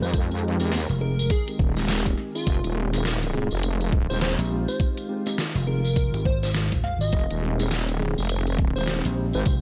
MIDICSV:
0, 0, Header, 1, 7, 480
1, 0, Start_track
1, 0, Key_signature, -4, "minor"
1, 0, Tempo, 582524
1, 114, Time_signature, 4, 2, 24, 8
1, 7919, End_track
2, 0, Start_track
2, 0, Title_t, "Digital synth lead"
2, 0, Program_c, 0, 84
2, 19, Note_on_c, 0, 72, 92
2, 105, Note_off_c, 0, 72, 0
2, 834, Note_on_c, 0, 70, 96
2, 1077, Note_off_c, 0, 70, 0
2, 1082, Note_on_c, 0, 68, 98
2, 1211, Note_off_c, 0, 68, 0
2, 1942, Note_on_c, 0, 65, 94
2, 2275, Note_off_c, 0, 65, 0
2, 3377, Note_on_c, 0, 72, 90
2, 3439, Note_off_c, 0, 72, 0
2, 3475, Note_on_c, 0, 72, 81
2, 3567, Note_off_c, 0, 72, 0
2, 3861, Note_on_c, 0, 72, 90
2, 3947, Note_off_c, 0, 72, 0
2, 4673, Note_on_c, 0, 70, 95
2, 5134, Note_off_c, 0, 70, 0
2, 5157, Note_on_c, 0, 72, 90
2, 5248, Note_off_c, 0, 72, 0
2, 5299, Note_on_c, 0, 72, 76
2, 5360, Note_off_c, 0, 72, 0
2, 5635, Note_on_c, 0, 77, 99
2, 5750, Note_off_c, 0, 77, 0
2, 5776, Note_on_c, 0, 75, 99
2, 6112, Note_off_c, 0, 75, 0
2, 7217, Note_on_c, 0, 72, 90
2, 7278, Note_off_c, 0, 72, 0
2, 7312, Note_on_c, 0, 72, 81
2, 7406, Note_off_c, 0, 72, 0
2, 7704, Note_on_c, 0, 72, 92
2, 7788, Note_off_c, 0, 72, 0
2, 7919, End_track
3, 0, Start_track
3, 0, Title_t, "Tine electric piano"
3, 0, Program_c, 1, 4
3, 0, Note_on_c, 1, 56, 77
3, 0, Note_on_c, 1, 60, 72
3, 0, Note_on_c, 1, 63, 71
3, 0, Note_on_c, 1, 67, 86
3, 332, Note_off_c, 1, 56, 0
3, 332, Note_off_c, 1, 60, 0
3, 332, Note_off_c, 1, 63, 0
3, 332, Note_off_c, 1, 67, 0
3, 353, Note_on_c, 1, 60, 76
3, 354, Note_on_c, 1, 56, 83
3, 354, Note_on_c, 1, 63, 79
3, 354, Note_on_c, 1, 67, 90
3, 463, Note_off_c, 1, 56, 0
3, 463, Note_off_c, 1, 60, 0
3, 463, Note_off_c, 1, 63, 0
3, 463, Note_off_c, 1, 67, 0
3, 498, Note_on_c, 1, 56, 102
3, 498, Note_on_c, 1, 63, 90
3, 498, Note_on_c, 1, 67, 119
3, 499, Note_on_c, 1, 60, 97
3, 622, Note_off_c, 1, 67, 0
3, 623, Note_off_c, 1, 56, 0
3, 623, Note_off_c, 1, 60, 0
3, 623, Note_off_c, 1, 63, 0
3, 831, Note_on_c, 1, 60, 69
3, 831, Note_on_c, 1, 63, 69
3, 832, Note_on_c, 1, 56, 74
3, 832, Note_on_c, 1, 68, 78
3, 941, Note_off_c, 1, 63, 0
3, 942, Note_off_c, 1, 56, 0
3, 942, Note_off_c, 1, 60, 0
3, 942, Note_off_c, 1, 68, 0
3, 1216, Note_on_c, 1, 60, 70
3, 1216, Note_on_c, 1, 63, 68
3, 1217, Note_on_c, 1, 56, 76
3, 1217, Note_on_c, 1, 67, 83
3, 1288, Note_off_c, 1, 60, 0
3, 1288, Note_off_c, 1, 63, 0
3, 1289, Note_off_c, 1, 56, 0
3, 1289, Note_off_c, 1, 67, 0
3, 1455, Note_on_c, 1, 56, 81
3, 1456, Note_on_c, 1, 60, 71
3, 1456, Note_on_c, 1, 63, 73
3, 1456, Note_on_c, 1, 67, 87
3, 1538, Note_off_c, 1, 56, 0
3, 1538, Note_off_c, 1, 60, 0
3, 1538, Note_off_c, 1, 63, 0
3, 1538, Note_off_c, 1, 67, 0
3, 1552, Note_on_c, 1, 56, 79
3, 1552, Note_on_c, 1, 60, 70
3, 1552, Note_on_c, 1, 63, 72
3, 1552, Note_on_c, 1, 67, 92
3, 1903, Note_off_c, 1, 56, 0
3, 1903, Note_off_c, 1, 60, 0
3, 1903, Note_off_c, 1, 63, 0
3, 1903, Note_off_c, 1, 67, 0
3, 1936, Note_on_c, 1, 56, 87
3, 1937, Note_on_c, 1, 60, 82
3, 1937, Note_on_c, 1, 63, 75
3, 1937, Note_on_c, 1, 68, 95
3, 2009, Note_off_c, 1, 56, 0
3, 2009, Note_off_c, 1, 60, 0
3, 2009, Note_off_c, 1, 63, 0
3, 2009, Note_off_c, 1, 68, 0
3, 2272, Note_on_c, 1, 56, 80
3, 2272, Note_on_c, 1, 63, 76
3, 2272, Note_on_c, 1, 67, 90
3, 2273, Note_on_c, 1, 60, 78
3, 2396, Note_off_c, 1, 56, 0
3, 2396, Note_off_c, 1, 63, 0
3, 2396, Note_off_c, 1, 67, 0
3, 2397, Note_off_c, 1, 60, 0
3, 2417, Note_on_c, 1, 56, 86
3, 2418, Note_on_c, 1, 60, 81
3, 2418, Note_on_c, 1, 68, 92
3, 2419, Note_on_c, 1, 63, 82
3, 2489, Note_off_c, 1, 56, 0
3, 2489, Note_off_c, 1, 60, 0
3, 2490, Note_off_c, 1, 63, 0
3, 2490, Note_off_c, 1, 68, 0
3, 2753, Note_on_c, 1, 56, 96
3, 2753, Note_on_c, 1, 60, 89
3, 2754, Note_on_c, 1, 63, 84
3, 2754, Note_on_c, 1, 68, 110
3, 2862, Note_off_c, 1, 60, 0
3, 2863, Note_off_c, 1, 56, 0
3, 2863, Note_off_c, 1, 63, 0
3, 2863, Note_off_c, 1, 68, 0
3, 3378, Note_on_c, 1, 56, 74
3, 3379, Note_on_c, 1, 63, 71
3, 3379, Note_on_c, 1, 67, 87
3, 3380, Note_on_c, 1, 60, 74
3, 3691, Note_off_c, 1, 56, 0
3, 3691, Note_off_c, 1, 60, 0
3, 3691, Note_off_c, 1, 63, 0
3, 3691, Note_off_c, 1, 67, 0
3, 3713, Note_on_c, 1, 63, 69
3, 3713, Note_on_c, 1, 67, 86
3, 3714, Note_on_c, 1, 56, 78
3, 3714, Note_on_c, 1, 60, 70
3, 4170, Note_off_c, 1, 63, 0
3, 4171, Note_off_c, 1, 56, 0
3, 4171, Note_off_c, 1, 60, 0
3, 4171, Note_off_c, 1, 67, 0
3, 4194, Note_on_c, 1, 56, 87
3, 4194, Note_on_c, 1, 63, 78
3, 4195, Note_on_c, 1, 60, 75
3, 4195, Note_on_c, 1, 67, 94
3, 4303, Note_off_c, 1, 56, 0
3, 4303, Note_off_c, 1, 60, 0
3, 4303, Note_off_c, 1, 63, 0
3, 4303, Note_off_c, 1, 67, 0
3, 4337, Note_on_c, 1, 60, 95
3, 4338, Note_on_c, 1, 56, 101
3, 4338, Note_on_c, 1, 63, 94
3, 4338, Note_on_c, 1, 67, 110
3, 4462, Note_off_c, 1, 56, 0
3, 4462, Note_off_c, 1, 60, 0
3, 4462, Note_off_c, 1, 63, 0
3, 4462, Note_off_c, 1, 67, 0
3, 4673, Note_on_c, 1, 56, 76
3, 4673, Note_on_c, 1, 60, 69
3, 4673, Note_on_c, 1, 63, 67
3, 4673, Note_on_c, 1, 68, 81
3, 4782, Note_off_c, 1, 60, 0
3, 4782, Note_off_c, 1, 63, 0
3, 4783, Note_off_c, 1, 56, 0
3, 4783, Note_off_c, 1, 68, 0
3, 5058, Note_on_c, 1, 67, 86
3, 5059, Note_on_c, 1, 56, 74
3, 5059, Note_on_c, 1, 60, 71
3, 5060, Note_on_c, 1, 63, 71
3, 5130, Note_off_c, 1, 56, 0
3, 5130, Note_off_c, 1, 60, 0
3, 5130, Note_off_c, 1, 63, 0
3, 5130, Note_off_c, 1, 67, 0
3, 6113, Note_on_c, 1, 56, 83
3, 6113, Note_on_c, 1, 60, 77
3, 6113, Note_on_c, 1, 63, 77
3, 6113, Note_on_c, 1, 67, 91
3, 6237, Note_off_c, 1, 56, 0
3, 6237, Note_off_c, 1, 60, 0
3, 6237, Note_off_c, 1, 63, 0
3, 6237, Note_off_c, 1, 67, 0
3, 6259, Note_on_c, 1, 56, 85
3, 6259, Note_on_c, 1, 60, 83
3, 6259, Note_on_c, 1, 63, 79
3, 6259, Note_on_c, 1, 68, 100
3, 6330, Note_off_c, 1, 56, 0
3, 6330, Note_off_c, 1, 60, 0
3, 6330, Note_off_c, 1, 63, 0
3, 6330, Note_off_c, 1, 68, 0
3, 6595, Note_on_c, 1, 56, 97
3, 6595, Note_on_c, 1, 60, 91
3, 6595, Note_on_c, 1, 63, 90
3, 6595, Note_on_c, 1, 68, 107
3, 6703, Note_off_c, 1, 56, 0
3, 6703, Note_off_c, 1, 63, 0
3, 6703, Note_off_c, 1, 68, 0
3, 6704, Note_off_c, 1, 60, 0
3, 7219, Note_on_c, 1, 63, 71
3, 7219, Note_on_c, 1, 67, 85
3, 7220, Note_on_c, 1, 56, 77
3, 7220, Note_on_c, 1, 60, 70
3, 7531, Note_off_c, 1, 56, 0
3, 7531, Note_off_c, 1, 60, 0
3, 7531, Note_off_c, 1, 63, 0
3, 7531, Note_off_c, 1, 67, 0
3, 7553, Note_on_c, 1, 56, 77
3, 7553, Note_on_c, 1, 60, 70
3, 7553, Note_on_c, 1, 63, 76
3, 7553, Note_on_c, 1, 67, 85
3, 7919, Note_off_c, 1, 56, 0
3, 7919, Note_off_c, 1, 60, 0
3, 7919, Note_off_c, 1, 63, 0
3, 7919, Note_off_c, 1, 67, 0
3, 7919, End_track
4, 0, Start_track
4, 0, Title_t, "Ambient pad"
4, 0, Program_c, 2, 92
4, 0, Note_on_c, 2, 51, 89
4, 0, Note_on_c, 2, 56, 82
4, 0, Note_on_c, 2, 70, 102
4, 2029, Note_off_c, 2, 70, 0
4, 2033, Note_on_c, 2, 65, 100
4, 5870, Note_off_c, 2, 65, 0
4, 5871, Note_on_c, 2, 60, 100
4, 7919, Note_off_c, 2, 51, 0
4, 7919, Note_off_c, 2, 56, 0
4, 7919, Note_off_c, 2, 60, 0
4, 7919, End_track
5, 0, Start_track
5, 0, Title_t, "Slap bass"
5, 0, Program_c, 3, 36
5, 737, Note_on_c, 3, 29, 98
5, 1058, Note_off_c, 3, 29, 0
5, 3615, Note_on_c, 3, 34, 99
5, 3833, Note_off_c, 3, 34, 0
5, 4575, Note_on_c, 3, 29, 98
5, 5034, Note_off_c, 3, 29, 0
5, 5054, Note_on_c, 3, 32, 101
5, 5753, Note_off_c, 3, 32, 0
5, 5777, Note_on_c, 3, 32, 94
5, 5858, Note_off_c, 3, 32, 0
5, 7460, Note_on_c, 3, 34, 104
5, 7676, Note_off_c, 3, 34, 0
5, 7794, Note_on_c, 3, 29, 92
5, 7916, Note_off_c, 3, 29, 0
5, 7919, End_track
6, 0, Start_track
6, 0, Title_t, "Wobble bass"
6, 0, Program_c, 4, 39
6, 17, Note_on_c, 4, 41, 99
6, 511, Note_off_c, 4, 41, 0
6, 511, Note_on_c, 4, 40, 99
6, 715, Note_off_c, 4, 40, 0
6, 1313, Note_on_c, 4, 27, 102
6, 1778, Note_off_c, 4, 27, 0
6, 2032, Note_on_c, 4, 29, 96
6, 2155, Note_off_c, 4, 29, 0
6, 2178, Note_on_c, 4, 27, 96
6, 2875, Note_off_c, 4, 27, 0
6, 2900, Note_on_c, 4, 29, 100
6, 3356, Note_off_c, 4, 29, 0
6, 3380, Note_on_c, 4, 27, 103
6, 3596, Note_off_c, 4, 27, 0
6, 5874, Note_on_c, 4, 29, 95
6, 5996, Note_off_c, 4, 29, 0
6, 6021, Note_on_c, 4, 27, 98
6, 6516, Note_off_c, 4, 27, 0
6, 6516, Note_on_c, 4, 26, 98
6, 6717, Note_off_c, 4, 26, 0
6, 6741, Note_on_c, 4, 29, 102
6, 7197, Note_off_c, 4, 29, 0
6, 7220, Note_on_c, 4, 27, 106
6, 7436, Note_off_c, 4, 27, 0
6, 7700, Note_on_c, 4, 32, 98
6, 7779, Note_off_c, 4, 32, 0
6, 7919, End_track
7, 0, Start_track
7, 0, Title_t, "Drums"
7, 22, Note_on_c, 9, 54, 79
7, 105, Note_off_c, 9, 54, 0
7, 112, Note_on_c, 9, 36, 125
7, 112, Note_on_c, 9, 42, 78
7, 115, Note_on_c, 9, 54, 69
7, 194, Note_off_c, 9, 42, 0
7, 195, Note_off_c, 9, 36, 0
7, 197, Note_off_c, 9, 54, 0
7, 258, Note_on_c, 9, 42, 24
7, 260, Note_on_c, 9, 54, 40
7, 320, Note_off_c, 9, 42, 0
7, 320, Note_on_c, 9, 42, 35
7, 342, Note_off_c, 9, 54, 0
7, 397, Note_off_c, 9, 42, 0
7, 397, Note_on_c, 9, 42, 41
7, 479, Note_off_c, 9, 42, 0
7, 492, Note_on_c, 9, 54, 74
7, 495, Note_on_c, 9, 40, 53
7, 495, Note_on_c, 9, 42, 38
7, 574, Note_off_c, 9, 54, 0
7, 577, Note_off_c, 9, 40, 0
7, 577, Note_off_c, 9, 42, 0
7, 591, Note_on_c, 9, 38, 126
7, 591, Note_on_c, 9, 42, 82
7, 591, Note_on_c, 9, 54, 71
7, 673, Note_off_c, 9, 38, 0
7, 673, Note_off_c, 9, 42, 0
7, 673, Note_off_c, 9, 54, 0
7, 736, Note_on_c, 9, 42, 51
7, 741, Note_on_c, 9, 54, 42
7, 818, Note_off_c, 9, 42, 0
7, 823, Note_off_c, 9, 54, 0
7, 983, Note_on_c, 9, 54, 88
7, 1065, Note_off_c, 9, 54, 0
7, 1069, Note_on_c, 9, 54, 73
7, 1071, Note_on_c, 9, 42, 80
7, 1073, Note_on_c, 9, 36, 114
7, 1152, Note_off_c, 9, 54, 0
7, 1153, Note_off_c, 9, 42, 0
7, 1155, Note_off_c, 9, 36, 0
7, 1218, Note_on_c, 9, 42, 55
7, 1218, Note_on_c, 9, 54, 41
7, 1300, Note_off_c, 9, 42, 0
7, 1301, Note_off_c, 9, 54, 0
7, 1313, Note_on_c, 9, 36, 121
7, 1395, Note_off_c, 9, 36, 0
7, 1453, Note_on_c, 9, 54, 91
7, 1457, Note_on_c, 9, 38, 38
7, 1536, Note_off_c, 9, 54, 0
7, 1540, Note_off_c, 9, 38, 0
7, 1549, Note_on_c, 9, 54, 73
7, 1553, Note_on_c, 9, 38, 120
7, 1553, Note_on_c, 9, 42, 78
7, 1632, Note_off_c, 9, 54, 0
7, 1635, Note_off_c, 9, 38, 0
7, 1635, Note_off_c, 9, 42, 0
7, 1696, Note_on_c, 9, 54, 40
7, 1698, Note_on_c, 9, 42, 55
7, 1699, Note_on_c, 9, 36, 68
7, 1779, Note_off_c, 9, 54, 0
7, 1780, Note_off_c, 9, 42, 0
7, 1781, Note_off_c, 9, 36, 0
7, 1792, Note_on_c, 9, 40, 39
7, 1875, Note_off_c, 9, 40, 0
7, 1939, Note_on_c, 9, 54, 82
7, 2021, Note_off_c, 9, 54, 0
7, 2031, Note_on_c, 9, 54, 60
7, 2034, Note_on_c, 9, 36, 122
7, 2034, Note_on_c, 9, 42, 81
7, 2114, Note_off_c, 9, 54, 0
7, 2116, Note_off_c, 9, 36, 0
7, 2116, Note_off_c, 9, 42, 0
7, 2178, Note_on_c, 9, 42, 53
7, 2179, Note_on_c, 9, 54, 44
7, 2260, Note_off_c, 9, 42, 0
7, 2262, Note_off_c, 9, 54, 0
7, 2417, Note_on_c, 9, 54, 85
7, 2418, Note_on_c, 9, 40, 54
7, 2418, Note_on_c, 9, 42, 36
7, 2500, Note_off_c, 9, 54, 0
7, 2501, Note_off_c, 9, 40, 0
7, 2501, Note_off_c, 9, 42, 0
7, 2512, Note_on_c, 9, 54, 75
7, 2514, Note_on_c, 9, 38, 127
7, 2514, Note_on_c, 9, 42, 83
7, 2595, Note_off_c, 9, 54, 0
7, 2596, Note_off_c, 9, 38, 0
7, 2596, Note_off_c, 9, 42, 0
7, 2658, Note_on_c, 9, 54, 41
7, 2660, Note_on_c, 9, 42, 54
7, 2740, Note_off_c, 9, 54, 0
7, 2742, Note_off_c, 9, 42, 0
7, 2890, Note_on_c, 9, 54, 75
7, 2973, Note_off_c, 9, 54, 0
7, 2988, Note_on_c, 9, 54, 64
7, 2993, Note_on_c, 9, 42, 80
7, 3071, Note_off_c, 9, 54, 0
7, 3076, Note_off_c, 9, 42, 0
7, 3135, Note_on_c, 9, 54, 41
7, 3138, Note_on_c, 9, 42, 52
7, 3218, Note_off_c, 9, 54, 0
7, 3220, Note_off_c, 9, 42, 0
7, 3234, Note_on_c, 9, 36, 114
7, 3316, Note_off_c, 9, 36, 0
7, 3379, Note_on_c, 9, 54, 83
7, 3461, Note_off_c, 9, 54, 0
7, 3472, Note_on_c, 9, 38, 120
7, 3472, Note_on_c, 9, 42, 76
7, 3474, Note_on_c, 9, 54, 70
7, 3555, Note_off_c, 9, 38, 0
7, 3555, Note_off_c, 9, 42, 0
7, 3556, Note_off_c, 9, 54, 0
7, 3617, Note_on_c, 9, 42, 52
7, 3624, Note_on_c, 9, 54, 42
7, 3700, Note_off_c, 9, 42, 0
7, 3706, Note_off_c, 9, 54, 0
7, 3858, Note_on_c, 9, 54, 79
7, 3941, Note_off_c, 9, 54, 0
7, 3951, Note_on_c, 9, 54, 59
7, 3954, Note_on_c, 9, 36, 114
7, 3954, Note_on_c, 9, 42, 77
7, 4033, Note_off_c, 9, 54, 0
7, 4036, Note_off_c, 9, 36, 0
7, 4036, Note_off_c, 9, 42, 0
7, 4099, Note_on_c, 9, 42, 54
7, 4101, Note_on_c, 9, 54, 39
7, 4181, Note_off_c, 9, 42, 0
7, 4183, Note_off_c, 9, 54, 0
7, 4333, Note_on_c, 9, 54, 75
7, 4340, Note_on_c, 9, 40, 58
7, 4340, Note_on_c, 9, 42, 37
7, 4416, Note_off_c, 9, 54, 0
7, 4423, Note_off_c, 9, 40, 0
7, 4423, Note_off_c, 9, 42, 0
7, 4435, Note_on_c, 9, 38, 118
7, 4435, Note_on_c, 9, 42, 81
7, 4435, Note_on_c, 9, 54, 70
7, 4517, Note_off_c, 9, 38, 0
7, 4517, Note_off_c, 9, 42, 0
7, 4517, Note_off_c, 9, 54, 0
7, 4580, Note_on_c, 9, 42, 51
7, 4582, Note_on_c, 9, 54, 38
7, 4662, Note_off_c, 9, 42, 0
7, 4664, Note_off_c, 9, 54, 0
7, 4817, Note_on_c, 9, 54, 79
7, 4899, Note_off_c, 9, 54, 0
7, 4913, Note_on_c, 9, 36, 107
7, 4915, Note_on_c, 9, 42, 78
7, 4918, Note_on_c, 9, 54, 66
7, 4996, Note_off_c, 9, 36, 0
7, 4997, Note_off_c, 9, 42, 0
7, 5000, Note_off_c, 9, 54, 0
7, 5059, Note_on_c, 9, 54, 42
7, 5060, Note_on_c, 9, 42, 52
7, 5141, Note_off_c, 9, 54, 0
7, 5142, Note_off_c, 9, 42, 0
7, 5154, Note_on_c, 9, 36, 107
7, 5236, Note_off_c, 9, 36, 0
7, 5297, Note_on_c, 9, 54, 87
7, 5301, Note_on_c, 9, 38, 38
7, 5380, Note_off_c, 9, 54, 0
7, 5384, Note_off_c, 9, 38, 0
7, 5390, Note_on_c, 9, 54, 67
7, 5393, Note_on_c, 9, 38, 114
7, 5393, Note_on_c, 9, 42, 77
7, 5473, Note_off_c, 9, 54, 0
7, 5476, Note_off_c, 9, 38, 0
7, 5476, Note_off_c, 9, 42, 0
7, 5539, Note_on_c, 9, 36, 65
7, 5539, Note_on_c, 9, 42, 54
7, 5539, Note_on_c, 9, 54, 39
7, 5621, Note_off_c, 9, 36, 0
7, 5621, Note_off_c, 9, 42, 0
7, 5622, Note_off_c, 9, 54, 0
7, 5633, Note_on_c, 9, 40, 40
7, 5715, Note_off_c, 9, 40, 0
7, 5775, Note_on_c, 9, 54, 79
7, 5858, Note_off_c, 9, 54, 0
7, 5866, Note_on_c, 9, 54, 67
7, 5872, Note_on_c, 9, 42, 81
7, 5874, Note_on_c, 9, 36, 118
7, 5948, Note_off_c, 9, 54, 0
7, 5955, Note_off_c, 9, 42, 0
7, 5956, Note_off_c, 9, 36, 0
7, 6018, Note_on_c, 9, 54, 37
7, 6020, Note_on_c, 9, 42, 54
7, 6101, Note_off_c, 9, 54, 0
7, 6102, Note_off_c, 9, 42, 0
7, 6257, Note_on_c, 9, 54, 80
7, 6261, Note_on_c, 9, 40, 60
7, 6261, Note_on_c, 9, 42, 39
7, 6340, Note_off_c, 9, 54, 0
7, 6343, Note_off_c, 9, 40, 0
7, 6343, Note_off_c, 9, 42, 0
7, 6351, Note_on_c, 9, 54, 72
7, 6356, Note_on_c, 9, 38, 111
7, 6356, Note_on_c, 9, 42, 82
7, 6433, Note_off_c, 9, 54, 0
7, 6438, Note_off_c, 9, 38, 0
7, 6438, Note_off_c, 9, 42, 0
7, 6494, Note_on_c, 9, 54, 34
7, 6498, Note_on_c, 9, 42, 51
7, 6577, Note_off_c, 9, 54, 0
7, 6581, Note_off_c, 9, 42, 0
7, 6740, Note_on_c, 9, 54, 76
7, 6822, Note_off_c, 9, 54, 0
7, 6830, Note_on_c, 9, 54, 61
7, 6833, Note_on_c, 9, 42, 78
7, 6912, Note_off_c, 9, 54, 0
7, 6916, Note_off_c, 9, 42, 0
7, 6975, Note_on_c, 9, 54, 40
7, 6980, Note_on_c, 9, 42, 56
7, 7057, Note_off_c, 9, 54, 0
7, 7062, Note_off_c, 9, 42, 0
7, 7075, Note_on_c, 9, 36, 112
7, 7157, Note_off_c, 9, 36, 0
7, 7220, Note_on_c, 9, 54, 80
7, 7302, Note_off_c, 9, 54, 0
7, 7312, Note_on_c, 9, 54, 66
7, 7313, Note_on_c, 9, 38, 114
7, 7313, Note_on_c, 9, 42, 76
7, 7395, Note_off_c, 9, 54, 0
7, 7396, Note_off_c, 9, 38, 0
7, 7396, Note_off_c, 9, 42, 0
7, 7458, Note_on_c, 9, 42, 55
7, 7459, Note_on_c, 9, 54, 39
7, 7540, Note_off_c, 9, 42, 0
7, 7541, Note_off_c, 9, 54, 0
7, 7690, Note_on_c, 9, 54, 84
7, 7773, Note_off_c, 9, 54, 0
7, 7792, Note_on_c, 9, 42, 80
7, 7795, Note_on_c, 9, 36, 117
7, 7797, Note_on_c, 9, 54, 69
7, 7874, Note_off_c, 9, 42, 0
7, 7878, Note_off_c, 9, 36, 0
7, 7879, Note_off_c, 9, 54, 0
7, 7919, End_track
0, 0, End_of_file